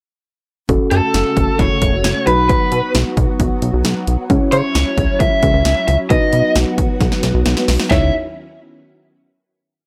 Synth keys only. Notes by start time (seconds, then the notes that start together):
0.69 C#4 F#4 A4
2.27 D#4 F#4 B4
4.30 C#4 E4 C#5
6.10 D#4 F#4 B4
7.91 D#4 E4 C#5